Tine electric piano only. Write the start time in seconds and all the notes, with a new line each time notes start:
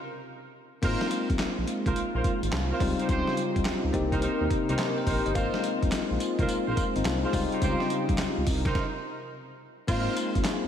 0.82 A#3 C4 D#4 F4
2.80 G3 C4 D#4 F4
3.93 A#3 C4 D#4 G4
4.70 D#4 G4
4.79 G4 A#4
4.98 C5
5.07 C5
5.26 C5 D#5
5.34 A#3 C4 D#4 F4
6.96 C4 D#4
7.06 F4
7.24 F4 G#4
7.33 G3 C4 D#4 F4
9.87 A#3 C4 D#4 F4